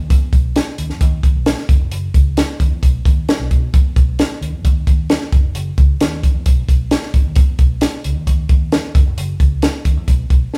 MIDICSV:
0, 0, Header, 1, 4, 480
1, 0, Start_track
1, 0, Tempo, 453515
1, 106, Time_signature, 4, 2, 24, 8
1, 11197, End_track
2, 0, Start_track
2, 0, Title_t, "Fingered electric bass"
2, 0, Program_c, 0, 33
2, 109, Note_on_c, 0, 40, 105
2, 282, Note_off_c, 0, 40, 0
2, 349, Note_on_c, 0, 35, 93
2, 609, Note_off_c, 0, 35, 0
2, 831, Note_on_c, 0, 39, 99
2, 917, Note_off_c, 0, 39, 0
2, 950, Note_on_c, 0, 40, 83
2, 1036, Note_off_c, 0, 40, 0
2, 1069, Note_on_c, 0, 39, 113
2, 1242, Note_off_c, 0, 39, 0
2, 1308, Note_on_c, 0, 39, 88
2, 1395, Note_off_c, 0, 39, 0
2, 1433, Note_on_c, 0, 35, 84
2, 1605, Note_off_c, 0, 35, 0
2, 1790, Note_on_c, 0, 30, 91
2, 1877, Note_off_c, 0, 30, 0
2, 1907, Note_on_c, 0, 29, 94
2, 1995, Note_off_c, 0, 29, 0
2, 2024, Note_on_c, 0, 30, 94
2, 2200, Note_off_c, 0, 30, 0
2, 2270, Note_on_c, 0, 37, 88
2, 2531, Note_off_c, 0, 37, 0
2, 2751, Note_on_c, 0, 39, 89
2, 2838, Note_off_c, 0, 39, 0
2, 2865, Note_on_c, 0, 40, 81
2, 2954, Note_off_c, 0, 40, 0
2, 2993, Note_on_c, 0, 35, 111
2, 3166, Note_off_c, 0, 35, 0
2, 3236, Note_on_c, 0, 39, 81
2, 3408, Note_off_c, 0, 39, 0
2, 3594, Note_on_c, 0, 35, 88
2, 3680, Note_off_c, 0, 35, 0
2, 3713, Note_on_c, 0, 47, 88
2, 3887, Note_off_c, 0, 47, 0
2, 3956, Note_on_c, 0, 40, 103
2, 4129, Note_off_c, 0, 40, 0
2, 4196, Note_on_c, 0, 35, 94
2, 4455, Note_off_c, 0, 35, 0
2, 4670, Note_on_c, 0, 39, 86
2, 4758, Note_off_c, 0, 39, 0
2, 4787, Note_on_c, 0, 40, 89
2, 4876, Note_off_c, 0, 40, 0
2, 4916, Note_on_c, 0, 39, 105
2, 5089, Note_off_c, 0, 39, 0
2, 5157, Note_on_c, 0, 39, 87
2, 5417, Note_off_c, 0, 39, 0
2, 5635, Note_on_c, 0, 30, 98
2, 5721, Note_off_c, 0, 30, 0
2, 5751, Note_on_c, 0, 29, 84
2, 5839, Note_off_c, 0, 29, 0
2, 5873, Note_on_c, 0, 30, 96
2, 6047, Note_off_c, 0, 30, 0
2, 6119, Note_on_c, 0, 37, 94
2, 6291, Note_off_c, 0, 37, 0
2, 6357, Note_on_c, 0, 39, 94
2, 6617, Note_off_c, 0, 39, 0
2, 6718, Note_on_c, 0, 40, 84
2, 6803, Note_off_c, 0, 40, 0
2, 6835, Note_on_c, 0, 35, 107
2, 7008, Note_off_c, 0, 35, 0
2, 7076, Note_on_c, 0, 35, 80
2, 7335, Note_off_c, 0, 35, 0
2, 7555, Note_on_c, 0, 32, 91
2, 7641, Note_off_c, 0, 32, 0
2, 7681, Note_on_c, 0, 39, 96
2, 7765, Note_off_c, 0, 39, 0
2, 7795, Note_on_c, 0, 40, 98
2, 7968, Note_off_c, 0, 40, 0
2, 8032, Note_on_c, 0, 35, 100
2, 8293, Note_off_c, 0, 35, 0
2, 8519, Note_on_c, 0, 37, 87
2, 8603, Note_off_c, 0, 37, 0
2, 8639, Note_on_c, 0, 39, 84
2, 8723, Note_off_c, 0, 39, 0
2, 8752, Note_on_c, 0, 39, 106
2, 8925, Note_off_c, 0, 39, 0
2, 8993, Note_on_c, 0, 39, 97
2, 9252, Note_off_c, 0, 39, 0
2, 9474, Note_on_c, 0, 30, 97
2, 9559, Note_off_c, 0, 30, 0
2, 9591, Note_on_c, 0, 29, 87
2, 9677, Note_off_c, 0, 29, 0
2, 9709, Note_on_c, 0, 30, 107
2, 9882, Note_off_c, 0, 30, 0
2, 9948, Note_on_c, 0, 37, 94
2, 10208, Note_off_c, 0, 37, 0
2, 10427, Note_on_c, 0, 39, 84
2, 10514, Note_off_c, 0, 39, 0
2, 10554, Note_on_c, 0, 40, 89
2, 10638, Note_off_c, 0, 40, 0
2, 10669, Note_on_c, 0, 35, 118
2, 10841, Note_off_c, 0, 35, 0
2, 10904, Note_on_c, 0, 35, 85
2, 11077, Note_off_c, 0, 35, 0
2, 11197, End_track
3, 0, Start_track
3, 0, Title_t, "Muted fingered electric bass strokes"
3, 3474, Note_on_c, 9, 29, 44
3, 3579, Note_off_c, 9, 29, 0
3, 11197, End_track
4, 0, Start_track
4, 0, Title_t, "Drums"
4, 109, Note_on_c, 9, 36, 107
4, 109, Note_on_c, 9, 42, 93
4, 215, Note_off_c, 9, 36, 0
4, 215, Note_off_c, 9, 42, 0
4, 346, Note_on_c, 9, 36, 99
4, 350, Note_on_c, 9, 42, 63
4, 452, Note_off_c, 9, 36, 0
4, 456, Note_off_c, 9, 42, 0
4, 590, Note_on_c, 9, 42, 93
4, 596, Note_on_c, 9, 38, 116
4, 696, Note_off_c, 9, 42, 0
4, 702, Note_off_c, 9, 38, 0
4, 828, Note_on_c, 9, 42, 77
4, 934, Note_off_c, 9, 42, 0
4, 949, Note_on_c, 9, 38, 35
4, 1055, Note_off_c, 9, 38, 0
4, 1067, Note_on_c, 9, 36, 92
4, 1067, Note_on_c, 9, 42, 96
4, 1173, Note_off_c, 9, 36, 0
4, 1173, Note_off_c, 9, 42, 0
4, 1306, Note_on_c, 9, 36, 90
4, 1311, Note_on_c, 9, 42, 74
4, 1412, Note_off_c, 9, 36, 0
4, 1417, Note_off_c, 9, 42, 0
4, 1546, Note_on_c, 9, 42, 81
4, 1549, Note_on_c, 9, 38, 114
4, 1652, Note_off_c, 9, 42, 0
4, 1655, Note_off_c, 9, 38, 0
4, 1669, Note_on_c, 9, 38, 35
4, 1775, Note_off_c, 9, 38, 0
4, 1788, Note_on_c, 9, 36, 112
4, 1791, Note_on_c, 9, 42, 86
4, 1894, Note_off_c, 9, 36, 0
4, 1897, Note_off_c, 9, 42, 0
4, 2027, Note_on_c, 9, 42, 82
4, 2133, Note_off_c, 9, 42, 0
4, 2269, Note_on_c, 9, 36, 101
4, 2272, Note_on_c, 9, 42, 63
4, 2375, Note_off_c, 9, 36, 0
4, 2378, Note_off_c, 9, 42, 0
4, 2510, Note_on_c, 9, 42, 102
4, 2516, Note_on_c, 9, 38, 123
4, 2616, Note_off_c, 9, 42, 0
4, 2622, Note_off_c, 9, 38, 0
4, 2751, Note_on_c, 9, 36, 85
4, 2754, Note_on_c, 9, 42, 78
4, 2857, Note_off_c, 9, 36, 0
4, 2860, Note_off_c, 9, 42, 0
4, 2992, Note_on_c, 9, 36, 90
4, 2996, Note_on_c, 9, 42, 93
4, 3098, Note_off_c, 9, 36, 0
4, 3101, Note_off_c, 9, 42, 0
4, 3233, Note_on_c, 9, 36, 99
4, 3241, Note_on_c, 9, 42, 82
4, 3339, Note_off_c, 9, 36, 0
4, 3347, Note_off_c, 9, 42, 0
4, 3478, Note_on_c, 9, 42, 77
4, 3481, Note_on_c, 9, 38, 110
4, 3584, Note_off_c, 9, 42, 0
4, 3587, Note_off_c, 9, 38, 0
4, 3715, Note_on_c, 9, 36, 86
4, 3715, Note_on_c, 9, 42, 74
4, 3821, Note_off_c, 9, 36, 0
4, 3821, Note_off_c, 9, 42, 0
4, 3956, Note_on_c, 9, 36, 117
4, 3957, Note_on_c, 9, 42, 95
4, 4062, Note_off_c, 9, 36, 0
4, 4062, Note_off_c, 9, 42, 0
4, 4195, Note_on_c, 9, 36, 102
4, 4196, Note_on_c, 9, 42, 59
4, 4300, Note_off_c, 9, 36, 0
4, 4302, Note_off_c, 9, 42, 0
4, 4435, Note_on_c, 9, 42, 93
4, 4441, Note_on_c, 9, 38, 111
4, 4541, Note_off_c, 9, 42, 0
4, 4547, Note_off_c, 9, 38, 0
4, 4684, Note_on_c, 9, 42, 80
4, 4789, Note_off_c, 9, 42, 0
4, 4918, Note_on_c, 9, 36, 96
4, 4919, Note_on_c, 9, 42, 93
4, 5024, Note_off_c, 9, 36, 0
4, 5025, Note_off_c, 9, 42, 0
4, 5156, Note_on_c, 9, 36, 96
4, 5159, Note_on_c, 9, 42, 76
4, 5262, Note_off_c, 9, 36, 0
4, 5265, Note_off_c, 9, 42, 0
4, 5394, Note_on_c, 9, 42, 70
4, 5398, Note_on_c, 9, 38, 115
4, 5500, Note_off_c, 9, 42, 0
4, 5503, Note_off_c, 9, 38, 0
4, 5513, Note_on_c, 9, 38, 36
4, 5619, Note_off_c, 9, 38, 0
4, 5636, Note_on_c, 9, 36, 106
4, 5636, Note_on_c, 9, 42, 74
4, 5742, Note_off_c, 9, 36, 0
4, 5742, Note_off_c, 9, 42, 0
4, 5874, Note_on_c, 9, 42, 90
4, 5980, Note_off_c, 9, 42, 0
4, 6115, Note_on_c, 9, 42, 57
4, 6116, Note_on_c, 9, 36, 106
4, 6221, Note_off_c, 9, 42, 0
4, 6222, Note_off_c, 9, 36, 0
4, 6356, Note_on_c, 9, 42, 103
4, 6362, Note_on_c, 9, 38, 118
4, 6462, Note_off_c, 9, 42, 0
4, 6468, Note_off_c, 9, 38, 0
4, 6598, Note_on_c, 9, 36, 86
4, 6602, Note_on_c, 9, 42, 78
4, 6704, Note_off_c, 9, 36, 0
4, 6707, Note_off_c, 9, 42, 0
4, 6835, Note_on_c, 9, 42, 100
4, 6838, Note_on_c, 9, 36, 91
4, 6941, Note_off_c, 9, 42, 0
4, 6944, Note_off_c, 9, 36, 0
4, 7076, Note_on_c, 9, 36, 89
4, 7082, Note_on_c, 9, 42, 79
4, 7181, Note_off_c, 9, 36, 0
4, 7187, Note_off_c, 9, 42, 0
4, 7314, Note_on_c, 9, 42, 79
4, 7317, Note_on_c, 9, 38, 114
4, 7420, Note_off_c, 9, 42, 0
4, 7423, Note_off_c, 9, 38, 0
4, 7434, Note_on_c, 9, 38, 35
4, 7540, Note_off_c, 9, 38, 0
4, 7556, Note_on_c, 9, 36, 92
4, 7556, Note_on_c, 9, 42, 79
4, 7662, Note_off_c, 9, 36, 0
4, 7662, Note_off_c, 9, 42, 0
4, 7785, Note_on_c, 9, 42, 87
4, 7794, Note_on_c, 9, 36, 116
4, 7891, Note_off_c, 9, 42, 0
4, 7900, Note_off_c, 9, 36, 0
4, 8030, Note_on_c, 9, 42, 65
4, 8032, Note_on_c, 9, 36, 96
4, 8136, Note_off_c, 9, 42, 0
4, 8138, Note_off_c, 9, 36, 0
4, 8268, Note_on_c, 9, 42, 98
4, 8274, Note_on_c, 9, 38, 110
4, 8373, Note_off_c, 9, 42, 0
4, 8380, Note_off_c, 9, 38, 0
4, 8513, Note_on_c, 9, 42, 81
4, 8619, Note_off_c, 9, 42, 0
4, 8754, Note_on_c, 9, 36, 86
4, 8756, Note_on_c, 9, 42, 98
4, 8860, Note_off_c, 9, 36, 0
4, 8862, Note_off_c, 9, 42, 0
4, 8989, Note_on_c, 9, 42, 74
4, 8990, Note_on_c, 9, 36, 102
4, 9094, Note_off_c, 9, 42, 0
4, 9096, Note_off_c, 9, 36, 0
4, 9231, Note_on_c, 9, 42, 79
4, 9235, Note_on_c, 9, 38, 112
4, 9337, Note_off_c, 9, 42, 0
4, 9340, Note_off_c, 9, 38, 0
4, 9472, Note_on_c, 9, 36, 115
4, 9478, Note_on_c, 9, 42, 87
4, 9578, Note_off_c, 9, 36, 0
4, 9583, Note_off_c, 9, 42, 0
4, 9714, Note_on_c, 9, 42, 93
4, 9820, Note_off_c, 9, 42, 0
4, 9949, Note_on_c, 9, 36, 101
4, 9952, Note_on_c, 9, 42, 60
4, 10054, Note_off_c, 9, 36, 0
4, 10058, Note_off_c, 9, 42, 0
4, 10186, Note_on_c, 9, 42, 100
4, 10192, Note_on_c, 9, 38, 122
4, 10292, Note_off_c, 9, 42, 0
4, 10298, Note_off_c, 9, 38, 0
4, 10427, Note_on_c, 9, 42, 83
4, 10428, Note_on_c, 9, 36, 88
4, 10533, Note_off_c, 9, 36, 0
4, 10533, Note_off_c, 9, 42, 0
4, 10667, Note_on_c, 9, 36, 88
4, 10668, Note_on_c, 9, 42, 97
4, 10772, Note_off_c, 9, 36, 0
4, 10774, Note_off_c, 9, 42, 0
4, 10905, Note_on_c, 9, 36, 96
4, 10907, Note_on_c, 9, 42, 78
4, 11011, Note_off_c, 9, 36, 0
4, 11013, Note_off_c, 9, 42, 0
4, 11151, Note_on_c, 9, 38, 59
4, 11197, Note_off_c, 9, 38, 0
4, 11197, End_track
0, 0, End_of_file